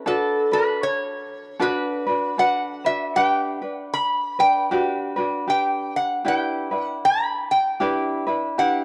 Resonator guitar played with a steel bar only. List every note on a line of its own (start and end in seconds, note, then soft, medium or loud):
0.08 0.53 A4 medium
0.53 0.85 B4 medium
0.83 1.63 C#5 medium
1.62 2.41 B4 medium
2.39 2.86 F#5 medium
2.86 3.17 E5 medium
3.16 3.96 G5 medium
3.94 4.37 B5 medium
4.40 4.69 G5 medium
5.50 5.96 G5 medium
5.96 6.28 F#5 medium
6.28 6.82 G5 medium
6.82 7.07 F#5 medium
7.05 7.52 B5 medium
7.51 7.80 G5 medium
8.59 8.84 F#5 medium